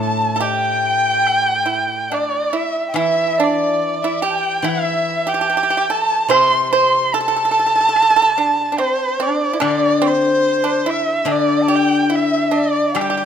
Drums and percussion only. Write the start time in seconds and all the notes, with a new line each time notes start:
0.42 low woodblock
1.27 high woodblock
2.12 high woodblock, low woodblock
2.96 high woodblock
4.65 high woodblock
6.31 high woodblock
7.96 high woodblock
9.61 high woodblock
11.28 high woodblock
12.96 high woodblock